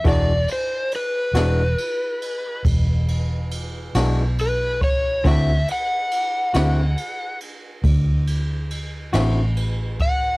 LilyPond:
<<
  \new Staff \with { instrumentName = "Electric slide guitar" } { \time 12/8 \key e \dorian \tempo 4. = 46 d''8 c''8 b'2 r2 b'8 cis''8 | e''8 fis''2 r2. fis''8 | }
  \new Staff \with { instrumentName = "Clean electric guitar" } { \time 12/8 \key e \dorian <e gis d' fis'>8 r4 <e gis d' fis'>8 r2 r8 <e gis d' fis'>8 r4 | <d c' e' fis'>8 r4 <d c' e' fis'>8 r2 r8 <d c' e' fis'>8 r4 | }
  \new Staff \with { instrumentName = "Fingered electric bass" } { \clef bass \time 12/8 \key e \dorian e,,8 r4 e,,8 r4 e,,4. b,,4. | d,8 r4 d,8 r4 d,4. a,,4. | }
  \new DrumStaff \with { instrumentName = "Drums" } \drummode { \time 12/8 <bd cymr>8 cymr8 cymr8 <cymr sn>8 cymr8 cymr8 <bd cymr>8 cymr8 cymr8 <cymr sn>8 cymr8 <bd cymr>8 | <bd cymr>8 cymr8 cymr8 <cymr sn>8 cymr8 cymr8 <bd cymr>8 cymr8 cymr8 <cymr sn>8 cymr8 <bd cymr>8 | }
>>